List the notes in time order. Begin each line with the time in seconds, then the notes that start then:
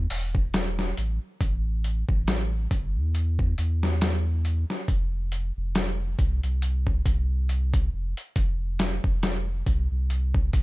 0.10 E1, open hi-hat
0.35 kick
0.54 snare, closed hi-hat
0.79 snare
0.97 A1, closed hi-hat
1.41 A1, kick, closed hi-hat
1.84 closed hi-hat
2.09 A1, kick
2.28 snare, closed hi-hat
2.71 G1, kick, closed hi-hat
2.96 E2
3.15 closed hi-hat
3.39 kick
3.58 E2, closed hi-hat
3.83 snare
4.01 snare, closed hi-hat
4.45 closed hi-hat
4.70 snare
4.88 F1, kick, closed hi-hat
5.32 closed hi-hat
5.57 F1
5.75 snare, closed hi-hat
6.19 C2, kick, closed hi-hat
6.43 C2, closed hi-hat
6.62 closed hi-hat
6.87 kick
7.06 C2, kick, closed hi-hat
7.49 closed hi-hat
7.74 kick, closed hi-hat
7.93 F1
8.17 closed hi-hat
8.36 F1, kick, closed hi-hat
8.79 snare, closed hi-hat
9.04 F1, kick
9.23 snare, closed hi-hat
9.66 C2, kick, closed hi-hat
9.91 C2
10.10 closed hi-hat
10.34 kick
10.53 C2, kick, closed hi-hat